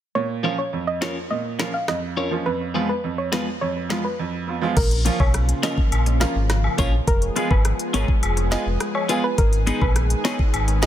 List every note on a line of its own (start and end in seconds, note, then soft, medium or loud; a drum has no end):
0.15 0.58 A#2 medium
0.15 0.27 C#5 loud
0.43 0.55 F3 medium
0.43 0.55 A#3 medium
0.43 0.59 C#4 medium
0.43 0.56 C#4 medium
0.43 0.60 F4 medium
0.43 0.56 F4 medium
0.43 0.60 A#4 medium
0.43 0.60 C#5 medium
0.58 0.70 C#5 medium
0.73 1.16 F2 medium
0.87 0.99 D#5 medium
1.01 1.13 F3 medium
1.01 1.13 A#3 medium
1.01 1.17 C#4 medium
1.01 1.13 C#4 medium
1.01 1.17 F4 medium
1.01 1.14 F4 medium
1.01 1.18 A#4 medium
1.01 1.13 C#5 medium
1.01 1.18 C#5 loud
1.01 snare loud
1.31 1.74 A#2 medium
1.31 1.42 D#5 medium
1.59 1.71 F3 medium
1.59 1.71 A#3 medium
1.59 1.75 C#4 medium
1.59 1.71 C#4 medium
1.59 1.75 F4 medium
1.59 1.71 F4 medium
1.59 1.75 A#4 medium
1.59 1.75 C#5 medium
1.59 snare loud
1.74 1.86 F5 medium
1.88 2.31 F2 medium
1.88 2.00 D#5 medium
1.88 cross-stick medium
1.88 snare medium
2.16 2.23 C#4 soft
2.16 2.33 C#4 medium
2.16 2.33 F4 medium
2.16 2.23 F4 soft
2.16 2.33 A#4 medium
2.16 2.29 C#5 medium
2.16 2.33 C#5 medium
2.31 2.43 F3 medium
2.31 2.43 A#3 medium
2.31 2.43 C#4 medium
2.31 2.44 F4 medium
2.46 2.89 F2 medium
2.46 2.58 B4 loud
2.74 2.86 F3 medium
2.74 2.90 G#3 medium
2.74 2.86 G#3 medium
2.74 2.90 B3 medium
2.74 2.87 B3 medium
2.74 2.91 F4 medium
2.74 2.87 F4 medium
2.74 2.91 B4 medium
2.89 3.01 B4 medium
3.04 3.47 F2 medium
3.18 3.30 C#5 medium
3.32 3.44 F3 medium
3.32 3.48 G#3 medium
3.32 3.44 G#3 medium
3.32 3.48 B3 medium
3.32 3.44 B3 medium
3.32 3.48 F4 loud
3.32 3.45 F4 medium
3.32 3.44 B4 medium
3.32 3.48 B4 loud
3.32 snare loud
3.61 4.04 F2 medium
3.61 3.73 C#5 medium
3.89 4.01 F3 medium
3.89 4.06 G#3 medium
3.89 4.02 G#3 medium
3.89 4.06 B3 medium
3.89 4.02 B3 medium
3.89 4.06 F4 medium
3.89 4.02 F4 medium
3.89 4.06 B4 medium
3.89 snare loud
4.04 4.16 B4 medium
4.19 4.62 F2 medium
4.47 4.53 B3 soft
4.47 4.54 F4 medium
4.61 4.73 F3 medium
4.61 4.74 G#3 medium
4.61 4.74 B3 medium
4.61 4.74 F4 medium
4.77 5.10 A#1 loud
4.77 7.05 C#3 medium
4.77 7.05 F3 medium
4.77 7.05 A#3 medium
4.77 7.05 F4 medium
4.77 5.00 A#4 loud
4.77 kick loud
4.77 closed hi-hat medium
4.77 crash loud
4.91 closed hi-hat medium
5.05 5.17 F3 medium
5.05 5.21 A#3 medium
5.05 5.17 A#3 medium
5.05 5.21 C#4 medium
5.05 5.17 C#4 medium
5.05 5.21 F4 loud
5.05 5.18 F4 medium
5.05 5.21 A#4 medium
5.05 closed hi-hat medium
5.05 cabasa medium
5.20 5.53 B1 medium
5.20 5.32 C#5 medium
5.20 kick medium
5.20 high woodblock medium
5.34 cross-stick medium
5.34 closed hi-hat medium
5.49 closed hi-hat medium
5.62 5.74 F3 medium
5.62 5.79 A#3 medium
5.62 5.75 A#3 medium
5.62 5.79 C#4 medium
5.62 5.75 C#4 medium
5.62 5.79 F4 medium
5.62 5.75 F4 medium
5.62 5.79 A#4 loud
5.62 5.75 D#5 medium
5.62 snare loud
5.62 closed hi-hat medium
5.62 cabasa medium
5.62 high woodblock medium
5.78 kick medium
5.92 6.25 A#1 loud
5.92 closed hi-hat medium
5.92 high woodblock medium
6.06 muted clean electric guitar stroke soft
6.06 closed hi-hat medium
6.20 6.32 F3 medium
6.20 6.36 A#3 medium
6.20 6.32 A#3 medium
6.20 6.37 C#4 medium
6.20 6.33 C#4 medium
6.20 6.37 F4 medium
6.20 6.33 F4 medium
6.20 6.37 A#4 medium
6.20 6.33 F5 medium
6.20 snare loud
6.20 closed hi-hat medium
6.20 cabasa medium
6.35 6.68 G#1 medium
6.50 cross-stick medium
6.50 snare medium
6.50 closed hi-hat medium
6.64 high woodblock medium
6.78 7.01 A#1 medium
6.78 6.90 F3 medium
6.78 6.90 A#3 medium
6.78 6.94 A#3 medium
6.78 6.94 C#4 loud
6.78 6.90 C#4 medium
6.78 6.94 F4 loud
6.78 6.91 F4 medium
6.78 6.95 A#4 loud
6.78 6.90 C#5 medium
6.78 kick medium
6.78 closed hi-hat medium
6.78 cabasa medium
7.07 7.30 F1 loud
7.07 9.36 F3 medium
7.07 9.36 G#3 medium
7.07 9.36 B3 medium
7.07 10.86 G#4 medium
7.07 7.31 A#4 loud
7.07 kick loud
7.07 closed hi-hat medium
7.22 closed hi-hat medium
7.35 7.47 G#3 medium
7.35 7.48 B3 medium
7.35 7.52 B3 medium
7.35 7.52 F4 medium
7.35 7.48 F4 medium
7.35 7.52 G#4 medium
7.35 7.48 G#4 medium
7.35 7.52 B4 medium
7.35 closed hi-hat medium
7.35 cabasa medium
7.51 7.73 G#1 loud
7.51 7.63 B4 medium
7.51 kick medium
7.51 high woodblock medium
7.65 cross-stick medium
7.65 closed hi-hat medium
7.79 closed hi-hat medium
7.93 8.05 G#1 loud
7.93 8.05 G#3 medium
7.93 8.05 B3 medium
7.93 8.09 B3 medium
7.93 8.06 F4 medium
7.93 8.10 F4 loud
7.93 8.10 G#4 loud
7.93 8.06 A#4 medium
7.93 8.10 B4 loud
7.93 8.06 C#5 medium
7.93 closed hi-hat medium
7.93 cabasa medium
7.93 high woodblock medium
8.08 kick medium
8.23 8.56 F1 loud
8.23 closed hi-hat medium
8.23 high woodblock medium
8.37 muted clean electric guitar stroke soft
8.37 closed hi-hat medium
8.51 8.63 G#3 medium
8.51 8.63 B3 medium
8.51 8.67 B3 medium
8.51 8.67 F4 medium
8.51 8.63 F4 medium
8.51 8.68 G#4 medium
8.51 8.64 G#4 medium
8.51 8.68 B4 medium
8.51 8.63 D#5 medium
8.51 snare loud
8.51 closed hi-hat medium
8.51 cabasa medium
8.66 8.77 F1 medium
8.80 cross-stick medium
8.80 closed hi-hat medium
8.95 9.07 C#5 medium
8.95 high woodblock medium
9.09 9.21 G#3 medium
9.09 9.25 B3 loud
9.09 9.21 B3 medium
9.09 9.25 F4 loud
9.09 9.21 F4 medium
9.09 9.25 G#4 loud
9.09 9.21 G#4 medium
9.09 9.25 B4 loud
9.09 closed hi-hat medium
9.09 cabasa medium
9.24 9.36 B4 medium
9.38 9.71 G#1 loud
9.38 10.86 D#3 medium
9.38 10.86 G#3 medium
9.38 10.86 B3 medium
9.38 9.62 A#4 loud
9.38 kick loud
9.38 closed hi-hat medium
9.53 closed hi-hat medium
9.66 9.78 G#3 medium
9.66 9.83 B3 medium
9.66 9.79 B3 medium
9.66 9.83 D#4 medium
9.66 9.79 D#4 medium
9.66 9.83 G#4 medium
9.66 9.79 G#4 medium
9.66 9.83 B4 medium
9.66 closed hi-hat medium
9.66 cabasa medium
9.82 10.15 A#1 loud
9.82 9.93 B4 medium
9.82 kick medium
9.82 high woodblock medium
9.96 cross-stick medium
9.96 closed hi-hat medium
10.10 closed hi-hat medium
10.24 10.36 G#3 medium
10.24 10.40 B3 medium
10.24 10.36 B3 medium
10.24 10.40 D#4 medium
10.24 10.37 D#4 medium
10.24 10.41 G#4 loud
10.24 10.37 G#4 medium
10.24 10.41 B4 loud
10.24 10.37 C#5 medium
10.24 snare loud
10.24 closed hi-hat medium
10.24 cabasa medium
10.24 high woodblock medium
10.39 kick medium
10.54 10.86 G#1 loud
10.54 closed hi-hat medium
10.54 high woodblock medium
10.68 muted clean electric guitar stroke soft
10.68 closed hi-hat medium
10.82 10.86 G#3 medium
10.82 10.86 B3 medium
10.82 10.86 D#4 medium
10.82 10.86 G#4 medium
10.82 10.86 D#5 medium
10.82 snare loud
10.82 closed hi-hat medium
10.82 cabasa medium